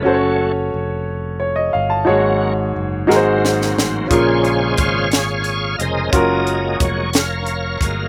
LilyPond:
<<
  \new Staff \with { instrumentName = "Grand piano" } { \time 6/8 \key ges \lydian \tempo 4. = 59 << { r2 des''16 ees''16 f''16 a''16~ | a''16 r2 r8. | r2. | r2. | } \\ { <des' ges' a' c'' des''>2. | <ees' ges' aes' des''>4. <ees' ges' aes' bes' c''>4. | <des' f' aes' bes'>2. | <des' f' ges' bes'>2. | } >> }
  \new Staff \with { instrumentName = "Grand piano" } { \clef bass \time 6/8 \key ges \lydian r2. | aes,4. aes,4. | bes,4. r4. | r2. | }
  \new Staff \with { instrumentName = "Tonewheel organ" } { \time 6/8 \key ges \lydian << { r2. | r2. | des''4 f''4. ees''8~ | ees''4 des''8 des''4 r8 | } \\ { r2. | r2. | <f' aes'>4 <aes' des''>4. bes'8~ | bes'4 r8 <bes' f''>4. | } >> }
  \new Staff \with { instrumentName = "Tonewheel organ" } { \clef bass \time 6/8 \key ges \lydian <ges a des'>8 r2 r8 | <ges bes des'>8 r4 <ges bes c'>4. | <des aes c''>4. r4 <des aes c''>8 | <ges aes bes>4. r4 <ges aes bes>8 | }
  \new Staff \with { instrumentName = "Fingered electric bass" } { \clef bass \time 6/8 \key ges \lydian ges,,4 f,,4. g,,8 | aes,,4 ges,,8 aes,,4 a,,8 | bes,,4 aes,,4. f,,8 | ges,,4 f,,4. g,,8 | }
  \new DrumStaff \with { instrumentName = "Drums" } \drummode { \time 6/8 r4. r4. | r4. sn8 sn16 sn16 sn8 | <hh bd>8 hh8 <hh bd>8 <hh sn>8 hh8 hh8 | <hh bd>8 hh8 <hh bd>8 <hh sn>8 hh8 <hh bd>8 | }
>>